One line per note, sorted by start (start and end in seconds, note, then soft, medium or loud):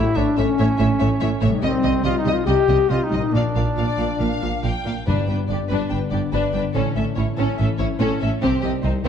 0.00 1.56 A2 soft
0.00 1.58 A3 soft
0.00 0.17 E4 medium
0.00 0.18 E4 medium
0.00 1.60 E4 soft
0.00 1.63 C#5 soft
0.15 0.25 A1 soft
0.15 0.24 A2 medium
0.15 0.25 A3 soft
0.15 0.37 D4 medium
0.15 0.38 D4 medium
0.15 0.26 C#5 soft
0.15 0.23 E5 soft
0.37 0.46 A1 medium
0.37 0.46 A2 medium
0.37 0.45 A3 medium
0.37 1.40 C#4 medium
0.37 1.42 C#4 medium
0.37 0.46 C#5 soft
0.37 0.45 E5 soft
0.59 0.67 A1 medium
0.59 0.67 A2 medium
0.59 0.67 A3 medium
0.59 0.68 C#5 medium
0.59 0.67 E5 soft
0.79 0.88 A1 medium
0.79 0.87 A2 medium
0.79 0.87 A3 medium
0.79 0.87 C#5 medium
0.79 0.87 E5 medium
1.00 1.08 A1 medium
1.00 1.09 A2 medium
1.00 1.09 A3 medium
1.00 1.08 C#5 medium
1.00 1.08 E5 medium
1.20 1.29 A1 medium
1.20 1.29 A2 medium
1.20 1.29 A3 medium
1.20 1.28 C#5 medium
1.20 1.29 E5 medium
1.41 1.50 A1 medium
1.41 1.50 A2 medium
1.41 1.49 A3 medium
1.41 1.49 C#5 medium
1.41 1.50 E5 medium
1.45 3.26 C3 medium
1.49 3.28 G3 soft
1.54 3.31 D#4 soft
1.58 3.33 D#5 soft
1.58 1.70 D#5 medium
1.63 1.71 C2 medium
1.63 1.71 C3 medium
1.63 1.71 G3 soft
1.63 2.02 C4 medium
1.63 1.72 D#5 medium
1.84 1.92 C2 medium
1.84 1.92 C3 medium
1.84 1.92 G3 medium
1.84 1.92 D#5 medium
2.04 2.13 C2 medium
2.04 2.12 C3 medium
2.04 2.13 G3 medium
2.04 2.18 F4 medium
2.04 2.12 D#5 medium
2.04 2.14 D#5 medium
2.18 2.34 D#4 medium
2.18 2.33 D#4 medium
2.26 2.34 C2 medium
2.26 2.34 C3 medium
2.26 2.34 G3 medium
2.26 2.34 D#5 soft
2.26 2.35 D#5 medium
2.33 2.46 F4 medium
2.33 2.47 F4 medium
2.46 2.55 C2 medium
2.46 2.55 C3 medium
2.46 2.55 G3 medium
2.46 2.88 G4 medium
2.46 2.91 G4 medium
2.46 2.56 D#5 medium
2.68 2.76 C2 medium
2.68 2.77 C3 medium
2.68 2.77 G3 medium
2.68 2.76 D#5 soft
2.68 2.77 D#5 soft
2.90 2.98 C2 soft
2.90 2.98 C3 medium
2.90 2.98 G3 soft
2.90 3.05 F4 medium
2.90 3.04 F4 medium
2.90 2.99 D#5 soft
3.04 3.17 D#4 medium
3.04 3.19 D#4 medium
3.10 3.20 C2 soft
3.10 3.20 C3 soft
3.10 3.18 G3 soft
3.10 3.21 D#5 soft
3.15 5.00 A#2 soft
3.15 3.34 D#4 medium
3.20 5.03 A#3 soft
3.20 3.35 D#4 medium
3.24 5.05 F4 soft
3.29 3.40 A#3 soft
3.29 5.48 D5 soft
3.33 3.42 A#1 soft
3.33 3.42 A#2 medium
3.33 4.86 D4 medium
3.33 4.87 D4 medium
3.33 3.44 D5 soft
3.33 3.43 F5 soft
3.55 3.64 A#1 soft
3.55 3.63 A#2 soft
3.55 3.64 A#3 soft
3.55 3.65 D5 soft
3.55 3.63 F5 soft
3.77 3.86 A#1 soft
3.77 3.85 A#2 soft
3.77 3.87 A#3 soft
3.77 4.19 D5 medium
3.77 3.85 F5 soft
3.98 4.06 A#1 soft
3.98 4.06 A#2 soft
3.98 4.08 A#3 soft
3.98 4.07 F5 soft
4.20 4.29 A#1 soft
4.20 4.28 A#2 soft
4.20 4.29 A#3 soft
4.20 4.28 F5 soft
4.20 4.65 F5 soft
4.42 4.50 A#1 soft
4.42 4.51 A#2 soft
4.42 4.50 A#3 soft
4.42 4.50 F5 soft
4.63 4.72 A#1 soft
4.63 4.72 A#2 soft
4.63 4.73 A#3 soft
4.63 4.71 F5 soft
4.63 5.07 G5 soft
4.85 4.93 A#1 soft
4.85 4.93 A#2 soft
4.85 4.93 A#3 soft
4.85 4.94 F5 soft
5.06 5.15 G1 soft
5.06 6.77 G2 soft
5.06 5.14 G2 soft
5.06 5.67 G2 soft
5.06 6.72 B3 soft
5.06 5.27 D4 soft
5.06 5.28 D4 soft
5.06 6.72 D4 soft
5.06 5.27 B4 soft
5.28 5.36 G1 soft
5.28 5.36 G2 soft
5.28 6.11 B3 soft
5.28 5.37 D4 soft
5.28 5.38 B4 soft
5.28 5.36 G5 soft
5.49 5.57 G1 soft
5.49 5.57 G2 soft
5.49 5.58 D4 soft
5.49 5.60 G4 soft
5.49 5.57 D5 soft
5.49 6.31 D5 soft
5.70 5.78 G1 soft
5.70 5.78 G2 soft
5.70 5.89 D4 soft
5.70 5.91 D4 soft
5.70 5.90 B4 soft
5.90 5.99 G1 soft
5.90 5.99 G2 soft
5.90 6.77 D3 soft
5.90 5.98 D4 soft
5.90 6.01 B4 soft
5.90 5.98 G5 soft
6.11 6.20 G1 soft
6.11 6.19 G2 soft
6.11 6.77 B3 soft
6.11 6.21 D4 soft
6.11 6.21 G4 soft
6.11 6.19 D5 soft
6.32 6.41 G1 soft
6.32 6.41 G2 soft
6.32 6.53 D4 soft
6.32 6.53 B4 soft
6.32 6.77 D5 soft
6.53 6.62 G1 soft
6.53 6.62 G2 soft
6.53 6.63 D4 soft
6.53 6.77 B4 soft
6.53 6.63 B4 soft
6.53 6.61 G5 soft
6.74 6.83 A1 soft
6.74 8.44 A2 soft
6.74 6.83 A2 soft
6.74 8.38 C#4 soft
6.74 6.95 C#4 soft
6.74 8.38 E4 soft
6.74 6.94 A4 soft
6.96 7.05 A1 soft
6.96 7.04 A2 soft
6.96 7.79 A3 soft
6.96 7.05 C#4 soft
6.96 7.05 A4 soft
6.96 7.05 E5 soft
7.16 7.25 A1 soft
7.16 7.24 A2 soft
7.16 7.25 C#4 soft
7.16 7.26 E4 soft
7.16 7.24 C#5 soft
7.16 8.00 C#5 soft
7.37 7.46 A1 soft
7.37 7.46 A2 soft
7.37 7.58 C#4 soft
7.37 7.58 C#4 medium
7.37 8.21 A4 soft
7.37 7.58 A4 soft
7.58 7.67 A1 soft
7.58 7.67 A2 soft
7.58 8.44 E3 soft
7.58 7.68 C#4 soft
7.58 7.68 A4 soft
7.58 7.67 E5 soft
7.79 7.88 A1 soft
7.79 7.87 A2 soft
7.79 8.44 A3 soft
7.79 7.88 C#4 soft
7.79 7.87 E4 soft
7.79 7.87 C#5 soft
7.99 8.09 A1 medium
7.99 8.07 A2 medium
7.99 8.20 C#4 medium
7.99 8.20 A4 medium
7.99 8.45 C#5 soft
8.20 8.30 A1 soft
8.20 8.30 A2 soft
8.20 8.30 C#4 medium
8.20 8.28 A4 soft
8.20 8.45 A4 soft
8.20 8.30 E5 soft
8.41 8.50 C2 medium
8.41 8.50 C3 medium
8.41 9.08 C3 medium
8.41 8.61 C4 medium
8.41 8.62 C4 medium
8.41 9.08 C4 medium
8.41 9.08 D#4 medium
8.41 8.62 G4 medium
8.61 8.71 C2 soft
8.61 8.71 C3 soft
8.61 9.08 G3 soft
8.61 8.71 C4 soft
8.61 8.69 G4 soft
8.61 8.71 D#5 soft
8.83 8.92 C2 soft
8.83 8.92 C3 soft
8.83 8.92 C4 soft
8.83 8.92 D#4 soft
8.83 8.91 C5 soft
8.83 9.08 C5 soft
9.04 9.08 C2 medium
9.04 9.08 C3 medium
9.04 9.08 C4 medium
9.04 9.08 G4 medium